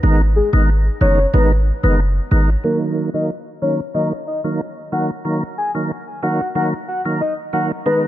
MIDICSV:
0, 0, Header, 1, 4, 480
1, 0, Start_track
1, 0, Key_signature, -6, "minor"
1, 0, Tempo, 652174
1, 25, Time_signature, 4, 2, 24, 8
1, 5943, End_track
2, 0, Start_track
2, 0, Title_t, "Soft synth lead"
2, 0, Program_c, 0, 80
2, 265, Note_on_c, 0, 68, 83
2, 363, Note_off_c, 0, 68, 0
2, 745, Note_on_c, 0, 73, 89
2, 930, Note_off_c, 0, 73, 0
2, 985, Note_on_c, 0, 71, 86
2, 1083, Note_off_c, 0, 71, 0
2, 1352, Note_on_c, 0, 71, 82
2, 1439, Note_off_c, 0, 71, 0
2, 1945, Note_on_c, 0, 70, 107
2, 2043, Note_off_c, 0, 70, 0
2, 2312, Note_on_c, 0, 75, 72
2, 2399, Note_off_c, 0, 75, 0
2, 2664, Note_on_c, 0, 73, 79
2, 2763, Note_off_c, 0, 73, 0
2, 2904, Note_on_c, 0, 75, 88
2, 3002, Note_off_c, 0, 75, 0
2, 3145, Note_on_c, 0, 75, 79
2, 3243, Note_off_c, 0, 75, 0
2, 3625, Note_on_c, 0, 78, 78
2, 3723, Note_off_c, 0, 78, 0
2, 4105, Note_on_c, 0, 80, 83
2, 4203, Note_off_c, 0, 80, 0
2, 4585, Note_on_c, 0, 78, 84
2, 4770, Note_off_c, 0, 78, 0
2, 4824, Note_on_c, 0, 78, 86
2, 4923, Note_off_c, 0, 78, 0
2, 5064, Note_on_c, 0, 78, 77
2, 5162, Note_off_c, 0, 78, 0
2, 5305, Note_on_c, 0, 75, 83
2, 5403, Note_off_c, 0, 75, 0
2, 5545, Note_on_c, 0, 78, 80
2, 5643, Note_off_c, 0, 78, 0
2, 5784, Note_on_c, 0, 71, 110
2, 5882, Note_off_c, 0, 71, 0
2, 5943, End_track
3, 0, Start_track
3, 0, Title_t, "Tonewheel organ"
3, 0, Program_c, 1, 16
3, 23, Note_on_c, 1, 51, 94
3, 24, Note_on_c, 1, 56, 88
3, 25, Note_on_c, 1, 59, 91
3, 27, Note_on_c, 1, 63, 103
3, 159, Note_off_c, 1, 51, 0
3, 160, Note_off_c, 1, 56, 0
3, 161, Note_off_c, 1, 59, 0
3, 161, Note_off_c, 1, 63, 0
3, 389, Note_on_c, 1, 51, 73
3, 391, Note_on_c, 1, 56, 68
3, 392, Note_on_c, 1, 59, 67
3, 394, Note_on_c, 1, 63, 85
3, 513, Note_off_c, 1, 51, 0
3, 514, Note_off_c, 1, 56, 0
3, 514, Note_off_c, 1, 59, 0
3, 515, Note_off_c, 1, 63, 0
3, 743, Note_on_c, 1, 51, 82
3, 744, Note_on_c, 1, 56, 74
3, 746, Note_on_c, 1, 59, 75
3, 747, Note_on_c, 1, 63, 90
3, 879, Note_off_c, 1, 51, 0
3, 880, Note_off_c, 1, 56, 0
3, 881, Note_off_c, 1, 59, 0
3, 882, Note_off_c, 1, 63, 0
3, 983, Note_on_c, 1, 51, 98
3, 984, Note_on_c, 1, 56, 89
3, 986, Note_on_c, 1, 59, 90
3, 987, Note_on_c, 1, 63, 102
3, 1119, Note_off_c, 1, 51, 0
3, 1120, Note_off_c, 1, 56, 0
3, 1121, Note_off_c, 1, 59, 0
3, 1121, Note_off_c, 1, 63, 0
3, 1350, Note_on_c, 1, 51, 75
3, 1352, Note_on_c, 1, 56, 68
3, 1353, Note_on_c, 1, 59, 70
3, 1355, Note_on_c, 1, 63, 80
3, 1473, Note_off_c, 1, 51, 0
3, 1474, Note_off_c, 1, 56, 0
3, 1475, Note_off_c, 1, 59, 0
3, 1475, Note_off_c, 1, 63, 0
3, 1702, Note_on_c, 1, 51, 73
3, 1704, Note_on_c, 1, 56, 66
3, 1705, Note_on_c, 1, 59, 67
3, 1707, Note_on_c, 1, 63, 81
3, 1839, Note_off_c, 1, 51, 0
3, 1840, Note_off_c, 1, 56, 0
3, 1840, Note_off_c, 1, 59, 0
3, 1841, Note_off_c, 1, 63, 0
3, 1942, Note_on_c, 1, 51, 85
3, 1944, Note_on_c, 1, 54, 78
3, 1946, Note_on_c, 1, 58, 78
3, 1947, Note_on_c, 1, 63, 96
3, 2280, Note_off_c, 1, 51, 0
3, 2281, Note_off_c, 1, 54, 0
3, 2282, Note_off_c, 1, 58, 0
3, 2283, Note_off_c, 1, 63, 0
3, 2310, Note_on_c, 1, 51, 65
3, 2311, Note_on_c, 1, 54, 60
3, 2313, Note_on_c, 1, 58, 63
3, 2314, Note_on_c, 1, 63, 75
3, 2433, Note_off_c, 1, 51, 0
3, 2434, Note_off_c, 1, 54, 0
3, 2435, Note_off_c, 1, 58, 0
3, 2435, Note_off_c, 1, 63, 0
3, 2663, Note_on_c, 1, 51, 75
3, 2665, Note_on_c, 1, 54, 70
3, 2666, Note_on_c, 1, 58, 69
3, 2667, Note_on_c, 1, 63, 86
3, 2799, Note_off_c, 1, 51, 0
3, 2800, Note_off_c, 1, 54, 0
3, 2801, Note_off_c, 1, 58, 0
3, 2802, Note_off_c, 1, 63, 0
3, 2903, Note_on_c, 1, 51, 90
3, 2904, Note_on_c, 1, 54, 80
3, 2905, Note_on_c, 1, 58, 81
3, 2907, Note_on_c, 1, 63, 100
3, 3039, Note_off_c, 1, 51, 0
3, 3040, Note_off_c, 1, 54, 0
3, 3041, Note_off_c, 1, 58, 0
3, 3041, Note_off_c, 1, 63, 0
3, 3269, Note_on_c, 1, 51, 70
3, 3271, Note_on_c, 1, 54, 62
3, 3272, Note_on_c, 1, 58, 62
3, 3274, Note_on_c, 1, 63, 77
3, 3393, Note_off_c, 1, 51, 0
3, 3394, Note_off_c, 1, 54, 0
3, 3394, Note_off_c, 1, 58, 0
3, 3395, Note_off_c, 1, 63, 0
3, 3623, Note_on_c, 1, 51, 70
3, 3624, Note_on_c, 1, 54, 64
3, 3625, Note_on_c, 1, 58, 66
3, 3627, Note_on_c, 1, 63, 77
3, 3759, Note_off_c, 1, 51, 0
3, 3760, Note_off_c, 1, 54, 0
3, 3761, Note_off_c, 1, 58, 0
3, 3761, Note_off_c, 1, 63, 0
3, 3862, Note_on_c, 1, 51, 90
3, 3864, Note_on_c, 1, 54, 80
3, 3865, Note_on_c, 1, 58, 80
3, 3867, Note_on_c, 1, 63, 92
3, 3999, Note_off_c, 1, 51, 0
3, 4000, Note_off_c, 1, 54, 0
3, 4001, Note_off_c, 1, 58, 0
3, 4001, Note_off_c, 1, 63, 0
3, 4229, Note_on_c, 1, 51, 65
3, 4231, Note_on_c, 1, 54, 63
3, 4232, Note_on_c, 1, 58, 62
3, 4234, Note_on_c, 1, 63, 72
3, 4353, Note_off_c, 1, 51, 0
3, 4353, Note_off_c, 1, 54, 0
3, 4354, Note_off_c, 1, 58, 0
3, 4355, Note_off_c, 1, 63, 0
3, 4582, Note_on_c, 1, 51, 76
3, 4584, Note_on_c, 1, 54, 68
3, 4585, Note_on_c, 1, 58, 70
3, 4587, Note_on_c, 1, 63, 85
3, 4719, Note_off_c, 1, 51, 0
3, 4720, Note_off_c, 1, 54, 0
3, 4720, Note_off_c, 1, 58, 0
3, 4721, Note_off_c, 1, 63, 0
3, 4822, Note_on_c, 1, 51, 91
3, 4824, Note_on_c, 1, 54, 79
3, 4825, Note_on_c, 1, 58, 81
3, 4826, Note_on_c, 1, 63, 98
3, 4959, Note_off_c, 1, 51, 0
3, 4960, Note_off_c, 1, 54, 0
3, 4960, Note_off_c, 1, 58, 0
3, 4961, Note_off_c, 1, 63, 0
3, 5189, Note_on_c, 1, 51, 68
3, 5191, Note_on_c, 1, 54, 61
3, 5192, Note_on_c, 1, 58, 62
3, 5194, Note_on_c, 1, 63, 80
3, 5313, Note_off_c, 1, 51, 0
3, 5314, Note_off_c, 1, 54, 0
3, 5314, Note_off_c, 1, 58, 0
3, 5315, Note_off_c, 1, 63, 0
3, 5542, Note_on_c, 1, 51, 71
3, 5543, Note_on_c, 1, 54, 62
3, 5545, Note_on_c, 1, 58, 64
3, 5546, Note_on_c, 1, 63, 79
3, 5679, Note_off_c, 1, 51, 0
3, 5680, Note_off_c, 1, 54, 0
3, 5680, Note_off_c, 1, 58, 0
3, 5681, Note_off_c, 1, 63, 0
3, 5783, Note_on_c, 1, 51, 91
3, 5784, Note_on_c, 1, 56, 79
3, 5786, Note_on_c, 1, 59, 82
3, 5787, Note_on_c, 1, 63, 93
3, 5943, Note_off_c, 1, 51, 0
3, 5943, Note_off_c, 1, 56, 0
3, 5943, Note_off_c, 1, 59, 0
3, 5943, Note_off_c, 1, 63, 0
3, 5943, End_track
4, 0, Start_track
4, 0, Title_t, "808-style bass"
4, 0, Program_c, 2, 38
4, 25, Note_on_c, 2, 32, 114
4, 301, Note_off_c, 2, 32, 0
4, 392, Note_on_c, 2, 32, 102
4, 658, Note_off_c, 2, 32, 0
4, 744, Note_on_c, 2, 30, 95
4, 925, Note_off_c, 2, 30, 0
4, 985, Note_on_c, 2, 32, 104
4, 1261, Note_off_c, 2, 32, 0
4, 1352, Note_on_c, 2, 30, 87
4, 1618, Note_off_c, 2, 30, 0
4, 1705, Note_on_c, 2, 32, 99
4, 1885, Note_off_c, 2, 32, 0
4, 5943, End_track
0, 0, End_of_file